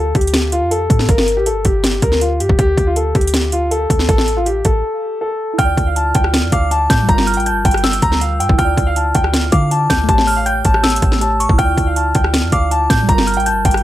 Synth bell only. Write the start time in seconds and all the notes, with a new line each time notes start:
5.58 F6
6.53 D6
6.90 G6
7.27 F6
7.46 G6
7.84 E6
8.58 F6
9.52 D6
9.90 G6
10.27 F6
10.46 G6
10.83 E6
11.40 C#6
11.58 F6
12.53 D6
12.90 G6
13.27 F6
13.46 G6